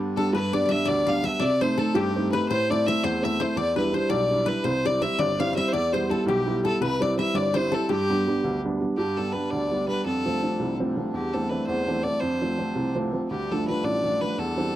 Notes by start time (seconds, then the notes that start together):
Already playing: G2 D3 G3 B3 D4
0.16 G3 B3 D4 A4
0.33 G2 B4
0.53 G3 B3 D4 D5
0.65 D5 E5
0.70 G3 B3 D4 E5
0.85 D2 D5
1.07 G3 B3 D4 F5
1.23 G3 B3 D4 E5
1.40 C3 D5
1.61 A3 C4 D#4 C5
1.78 A3 C4 D#4 A4
1.95 G2 G4
2.16 A3 C4 D#4
2.31 A3 C4 D#4 B4
2.48 A2 C5
2.69 A3 C4 E4 D5
2.86 A3 C4 E4 E5
3.03 E2 C5
3.22 A3 C4 E4 E5
3.39 A3 C4 E4 C5
3.56 E2 D5
3.76 G3 D4 E4 B4
3.93 G3 D4 E4 C5
4.10 B1 D5
4.31 G3 D4 E4
4.46 G3 D4 E4 B4
4.64 C2 C5
4.85 G3 C4 E4 D5
5.02 G3 C4 E4 E5
5.19 G1 D5
5.39 G3 C4 E4 F5
5.53 G3 C4 E4 E5 F5
5.57 E5
5.68 C5
5.72 E2 D5
5.93 G3 B3 E4 C5
6.09 G3 B3 E4 A4
6.26 B1 G4
6.46 G3 B3 E4
6.63 G3 B3 E4 A4
6.81 C2 B4
7.00 G3 C4 E4 D5
7.17 G3 C4 E4 E5
7.34 G1 D5
7.54 G3 C4 E4 C5
7.72 G3 C4 E4 A4
7.89 G2 G4
8.10 G3 B3 D4
8.28 G3 B3 D4
8.44 D2
8.65 G3 B3 D4
8.81 G3 B3 D4
8.97 G2 D3 G4
9.17 G3 B3 D4 A4
9.32 G3 B3 D4 B4
9.50 D2 D5
9.71 G3 B3 D4
9.87 G3 B3 D4 B4
10.05 F2 A4
10.26 F3 A3 C4
10.42 F3 A3 C4
10.59 C2
10.80 F3 A3 C4
10.97 F3 A3 C4
11.14 E2 G4
11.33 E3 A3 C4 A4
11.49 E3 A3 C4 B4
11.66 E2 C5
11.88 E3 A3 C4
12.03 E3 A3 C4 D5
12.20 F2 C5
12.41 F3 A3 C4
12.58 F3 A3 C4
12.75 C2
12.95 F3 A3 C4
13.12 F3 A3 C4
13.29 D2 G2 D3 G4
13.51 F3 A3 D4 A4
13.67 F3 A3 D4 B4
13.84 A1 D5
14.03 F3 A3 D4
14.21 F3 A3 D4 B4
14.38 E2 A4
14.57 E3 G3 C4